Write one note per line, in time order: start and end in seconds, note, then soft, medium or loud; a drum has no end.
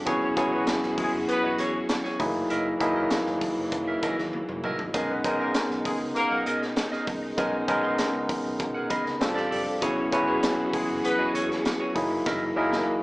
0.05 0.30 E1 loud
0.05 2.17 E3 medium
0.05 0.24 F#3 medium
0.05 0.24 B3 medium
0.05 2.17 C#4 medium
0.05 0.25 C#4 medium
0.05 0.25 E4 medium
0.05 2.17 F#4 medium
0.05 0.23 F#4 medium
0.05 2.17 G#4 medium
0.05 0.25 G#4 loud
0.05 0.24 G#4 medium
0.05 0.24 C#5 loud
0.05 kick loud
0.05 closed hi-hat medium
0.22 0.34 C#4 medium
0.22 0.34 C#5 medium
0.36 0.61 E1 medium
0.36 1.10 F#3 medium
0.36 1.10 B3 medium
0.36 1.11 C#4 medium
0.36 1.11 E4 medium
0.36 0.50 F#4 medium
0.36 1.11 G#4 medium
0.36 0.51 G#4 medium
0.36 0.51 C#5 medium
0.36 kick medium
0.36 closed hi-hat medium
0.52 0.65 B3 medium
0.52 0.66 F#4 soft
0.52 0.66 G#4 medium
0.52 0.64 B4 medium
0.52 0.66 C#5 medium
0.67 muted clean electric guitar stroke soft
0.67 snare loud
0.67 closed hi-hat medium
0.83 0.95 E1 medium
0.83 muted clean electric guitar stroke soft
0.83 snare soft
0.98 1.10 G#3 medium
0.98 1.10 G#4 loud
0.98 kick medium
0.98 open hi-hat medium
1.13 1.25 F#1 medium
1.13 muted clean electric guitar stroke soft
1.29 1.53 B3 loud
1.29 1.53 B4 loud
1.29 muted clean electric guitar stroke soft
1.29 closed hi-hat medium
1.43 1.55 E1 medium
1.43 1.57 F#4 soft
1.43 1.57 G#4 medium
1.43 1.57 D#5 medium
1.58 1.82 E2 loud
1.58 1.76 F#4 medium
1.58 1.74 G#4 medium
1.58 1.73 C#5 loud
1.58 closed hi-hat medium
1.74 muted clean electric guitar stroke soft
1.89 muted clean electric guitar stroke soft
1.89 snare loud
1.89 closed hi-hat medium
2.04 2.19 F#4 medium
2.04 2.19 G#4 medium
2.04 2.20 C#5 medium
2.04 snare soft
2.19 2.44 F#1 loud
2.19 4.91 E3 medium
2.19 2.68 F#3 medium
2.19 4.91 F#3 medium
2.19 2.26 A3 medium
2.19 4.91 A#3 medium
2.19 2.68 D#4 medium
2.19 2.68 E4 medium
2.19 2.69 G#4 medium
2.19 muted clean electric guitar stroke soft
2.19 kick loud
2.19 open hi-hat medium
2.26 2.72 A#3 medium
2.35 muted clean electric guitar stroke medium
2.50 2.74 F#1 loud
2.50 2.67 E4 medium
2.50 2.67 A#4 medium
2.50 2.68 D#5 medium
2.50 closed hi-hat medium
2.80 3.04 F#1 loud
2.80 3.54 F#3 medium
2.80 3.54 A#3 medium
2.80 3.54 D#4 medium
2.80 2.94 E4 medium
2.80 3.54 E4 medium
2.80 3.54 G#4 medium
2.80 2.94 A#4 medium
2.80 2.95 D#5 medium
2.80 kick medium
2.80 closed hi-hat medium
2.96 3.10 E4 medium
2.96 3.10 A#4 medium
2.96 3.09 D#5 medium
3.10 muted clean electric guitar stroke soft
3.10 snare loud
3.10 closed hi-hat medium
3.26 3.38 G#1 medium
3.26 muted clean electric guitar stroke soft
3.26 snare soft
3.41 kick medium
3.41 open hi-hat medium
3.57 3.69 F#1 medium
3.57 muted clean electric guitar stroke soft
3.72 3.96 F#2 medium
3.72 muted clean electric guitar stroke soft
3.72 kick medium
3.72 closed hi-hat medium
3.87 4.01 E4 soft
3.87 4.01 A#4 medium
3.87 4.01 E5 medium
4.02 4.20 E4 medium
4.02 4.18 A#4 medium
4.02 4.17 D#5 medium
4.02 kick medium
4.02 closed hi-hat medium
4.18 4.30 D#2 medium
4.18 muted clean electric guitar stroke soft
4.18 snare soft
4.33 muted clean electric guitar stroke soft
4.33 high tom medium
4.48 4.60 F#2 medium
4.48 muted clean electric guitar stroke soft
4.48 mid tom medium
4.64 4.75 C#2 medium
4.64 4.81 E4 medium
4.64 4.79 A#4 loud
4.64 4.78 D#5 medium
4.64 mid tom medium
4.79 4.91 C2 medium
4.79 muted clean electric guitar stroke soft
4.79 floor tom medium
4.94 5.18 B1 loud
4.94 9.17 B2 medium
4.94 5.12 G#3 medium
4.94 9.17 G#3 medium
4.94 5.12 B3 medium
4.94 5.13 C#4 medium
4.94 9.17 D#4 medium
4.94 5.13 D#4 medium
4.94 5.11 G#4 medium
4.94 5.11 A#4 medium
4.94 5.13 A#4 medium
4.94 5.12 D#5 medium
4.94 kick loud
4.94 closed hi-hat medium
5.09 5.21 B3 medium
5.09 5.21 B4 medium
5.24 5.48 B1 medium
5.24 5.98 G#3 medium
5.24 5.98 B3 medium
5.24 5.98 C#4 medium
5.24 5.98 D#4 medium
5.24 5.38 G#4 medium
5.24 5.38 A#4 medium
5.24 5.99 A#4 medium
5.24 5.38 D#5 medium
5.24 kick medium
5.24 closed hi-hat medium
5.40 5.52 A#3 medium
5.40 5.54 G#4 medium
5.40 5.52 A#4 medium
5.40 5.53 A#4 medium
5.40 5.53 D#5 medium
5.54 muted clean electric guitar stroke soft
5.54 snare loud
5.54 closed hi-hat medium
5.70 5.82 B1 medium
5.70 muted clean electric guitar stroke soft
5.70 snare soft
5.85 5.97 G#3 medium
5.85 5.97 G#4 medium
5.85 kick medium
5.85 open hi-hat medium
6.00 6.12 C#2 medium
6.00 muted clean electric guitar stroke soft
6.15 6.40 A#3 loud
6.15 6.40 A#4 loud
6.15 muted clean electric guitar stroke soft
6.15 closed hi-hat medium
6.31 6.43 B1 medium
6.31 6.45 G#4 soft
6.31 6.45 A#4 medium
6.31 6.44 F#5 medium
6.46 6.70 B2 medium
6.46 6.63 G#4 medium
6.46 6.61 A#4 medium
6.46 6.60 D#5 medium
6.46 closed hi-hat medium
6.61 muted clean electric guitar stroke soft
6.61 snare soft
6.76 muted clean electric guitar stroke soft
6.76 snare loud
6.76 closed hi-hat medium
6.92 7.06 G#4 medium
6.92 7.07 A#4 medium
6.92 7.07 D#5 medium
6.92 snare soft
7.07 7.31 C2 medium
7.07 muted clean electric guitar stroke soft
7.07 kick medium
7.07 open hi-hat medium
7.23 muted clean electric guitar stroke soft
7.37 7.62 B1 loud
7.37 7.56 G#3 medium
7.37 7.56 B3 medium
7.37 7.56 C#4 medium
7.37 7.57 D#4 medium
7.37 7.55 G#4 medium
7.37 7.55 A#4 medium
7.37 7.57 A#4 loud
7.37 7.55 D#5 loud
7.37 kick loud
7.37 closed hi-hat medium
7.68 7.92 B1 loud
7.68 8.42 G#3 medium
7.68 8.42 B3 medium
7.68 8.42 C#4 medium
7.68 8.42 D#4 medium
7.68 7.82 G#4 medium
7.68 7.82 A#4 medium
7.68 8.42 A#4 medium
7.68 7.82 D#5 medium
7.68 kick medium
7.68 closed hi-hat medium
7.83 7.97 G#4 medium
7.83 7.97 A#4 medium
7.83 7.97 D#5 medium
7.98 muted clean electric guitar stroke soft
7.98 snare loud
7.98 closed hi-hat medium
8.14 8.26 C#2 medium
8.14 muted clean electric guitar stroke soft
8.29 kick medium
8.29 open hi-hat medium
8.44 8.57 B1 loud
8.44 muted clean electric guitar stroke soft
8.59 8.84 B2 loud
8.59 muted clean electric guitar stroke soft
8.59 kick medium
8.59 closed hi-hat medium
8.74 8.88 G#4 soft
8.74 8.89 A#4 medium
8.74 8.88 F#5 medium
8.90 9.07 G#4 medium
8.90 9.05 A#4 medium
8.90 9.04 D#5 medium
8.90 9.19 B5 medium
8.90 kick medium
8.90 closed hi-hat medium
9.05 9.17 C#2 medium
9.05 muted clean electric guitar stroke medium
9.05 snare soft
9.20 9.33 F1 loud
9.20 9.81 F3 medium
9.20 9.69 G3 medium
9.20 9.70 C4 medium
9.20 9.70 D4 medium
9.20 9.82 D4 medium
9.20 9.70 F4 medium
9.20 9.81 G4 medium
9.20 9.81 A4 medium
9.20 9.70 A4 medium
9.20 9.35 G5 medium
9.20 muted clean electric guitar stroke soft
9.20 snare loud
9.20 closed hi-hat medium
9.35 9.48 A1 medium
9.35 9.49 G4 medium
9.35 9.50 A4 medium
9.35 9.51 D5 medium
9.35 9.50 F5 medium
9.35 snare soft
9.51 9.67 F#1 medium
9.51 9.64 G4 medium
9.51 9.65 A4 medium
9.51 9.65 D5 medium
9.51 9.80 D5 medium
9.51 open hi-hat medium
9.66 9.82 F1 medium
9.66 muted clean electric guitar stroke soft
9.81 10.06 E1 loud
9.81 13.03 E3 medium
9.81 10.00 F#3 medium
9.81 10.00 B3 medium
9.81 11.93 C#4 medium
9.81 10.01 C#4 medium
9.81 10.01 E4 medium
9.81 11.93 F#4 medium
9.81 9.99 F#4 medium
9.81 11.93 G#4 medium
9.81 9.99 G#4 medium
9.81 10.01 G#4 medium
9.81 9.99 C#5 medium
9.81 kick loud
9.81 closed hi-hat loud
9.97 10.09 C#4 medium
9.97 10.09 C#5 medium
10.12 10.36 E1 loud
10.12 10.86 F#3 medium
10.12 10.86 B3 medium
10.12 10.86 C#4 medium
10.12 10.86 E4 medium
10.12 10.26 F#4 medium
10.12 10.26 G#4 medium
10.12 10.86 B4 medium
10.12 10.26 C#5 medium
10.12 kick medium
10.12 closed hi-hat medium
10.27 10.40 B3 medium
10.27 10.41 F#4 medium
10.27 10.41 G#4 medium
10.27 10.40 B4 medium
10.27 10.41 C#5 medium
10.43 muted clean electric guitar stroke soft
10.43 snare loud
10.43 closed hi-hat loud
10.58 10.70 E1 medium
10.58 muted clean electric guitar stroke soft
10.73 10.86 G#3 medium
10.73 10.86 G#4 medium
10.73 kick medium
10.73 open hi-hat medium
10.88 11.00 F#1 medium
10.88 muted clean electric guitar stroke soft
11.04 11.28 B3 loud
11.04 11.28 B4 loud
11.04 muted clean electric guitar stroke soft
11.04 closed hi-hat medium
11.19 11.31 E1 medium
11.19 11.33 F#4 soft
11.19 11.33 G#4 medium
11.19 11.32 D#5 medium
11.34 11.58 E2 loud
11.34 11.51 F#4 medium
11.34 11.49 G#4 medium
11.34 11.48 C#5 loud
11.34 closed hi-hat medium
11.49 muted clean electric guitar stroke soft
11.49 snare soft
11.65 muted clean electric guitar stroke soft
11.65 snare loud
11.65 closed hi-hat medium
11.80 11.95 F#4 medium
11.80 11.96 G#4 medium
11.80 11.96 C#5 medium
11.94 12.19 F#1 loud
11.94 12.44 F#3 medium
11.94 13.03 F#3 medium
11.94 12.44 A#3 medium
11.94 13.03 A#3 medium
11.94 12.44 D#4 medium
11.94 12.44 E4 medium
11.94 12.45 G#4 medium
11.94 muted clean electric guitar stroke soft
11.94 kick medium
11.94 open hi-hat medium
12.11 muted clean electric guitar stroke medium
12.26 12.50 F#1 loud
12.26 12.43 E4 medium
12.26 12.43 A#4 medium
12.26 12.44 D#5 medium
12.26 kick loud
12.26 snare medium
12.56 12.80 F#1 loud
12.56 13.03 F#3 medium
12.56 13.03 A#3 medium
12.56 13.03 D#4 medium
12.56 12.70 E4 medium
12.56 13.03 E4 medium
12.56 13.03 G#4 medium
12.56 12.70 A#4 medium
12.56 12.70 D#5 medium
12.72 12.86 E4 soft
12.72 12.85 A#4 medium
12.72 12.85 D#5 medium
12.72 snare medium
12.87 muted clean electric guitar stroke soft